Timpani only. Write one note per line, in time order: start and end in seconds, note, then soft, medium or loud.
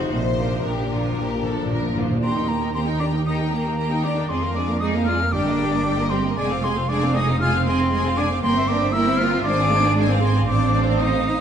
0.12 0.18 A#2 soft
0.35 0.42 A#2 soft
0.43 0.50 A#2 soft
0.51 0.57 A#2 soft
0.58 0.64 A#2 soft
0.66 0.72 A#2 soft
0.73 0.79 A#2 soft
0.80 0.86 A#2 soft
0.88 0.94 A#2 soft
0.96 1.02 A#2 soft
1.03 1.10 A#2 soft
1.12 1.18 A#2 soft
1.20 1.25 A#2 soft
1.27 1.33 A#2 soft
1.35 1.42 A#2 medium
1.43 1.49 A#2 medium
1.50 1.57 A#2 medium
1.58 1.64 A#2 medium
1.66 1.72 A#2 medium
1.73 1.79 A#2 medium
1.80 1.87 A#2 medium
1.88 1.94 A#2 medium
1.95 2.01 A#2 medium
2.02 2.09 A#2 medium
2.11 2.17 A#2 medium